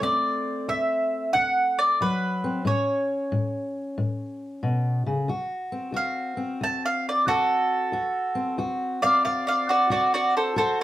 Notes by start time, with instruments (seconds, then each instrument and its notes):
Already playing: steel-string acoustic guitar A3
0.01 steel-string acoustic guitar D2 C4, mandolin D5
0.68 steel-string acoustic guitar D2, mandolin E5
1.33 steel-string acoustic guitar D2, mandolin F#5
1.79 mandolin D5
2.01 steel-string acoustic guitar D2 F#3, mandolin B4
2.44 steel-string acoustic guitar C4
2.65 steel-string acoustic guitar A2 C#4, mandolin C#5
3.32 steel-string acoustic guitar A2
3.98 steel-string acoustic guitar A2
4.63 steel-string acoustic guitar B2
5.06 steel-string acoustic guitar C#3
5.28 steel-string acoustic guitar D2 F#4
5.72 steel-string acoustic guitar C4
5.92 steel-string acoustic guitar D2 F#4
5.96 mandolin F5
6.37 steel-string acoustic guitar C4
6.61 steel-string acoustic guitar D2, mandolin A5
6.86 mandolin F5
7.09 mandolin D5
7.27 steel-string acoustic guitar D2 F#4, mandolin F#4 A4
7.92 steel-string acoustic guitar D2 F#4
8.35 steel-string acoustic guitar C4
8.58 steel-string acoustic guitar D2 F#4
9.02 steel-string acoustic guitar C4, mandolin D5 F5
9.25 steel-string acoustic guitar D2, mandolin D5 F5
9.47 mandolin D5 F5
9.69 mandolin F#4 D5
9.90 steel-string acoustic guitar D2 F#4, mandolin F#4 D5
10.14 mandolin F#4 D5
10.37 mandolin A4 C5
10.56 steel-string acoustic guitar D2 F#4, mandolin A4 C5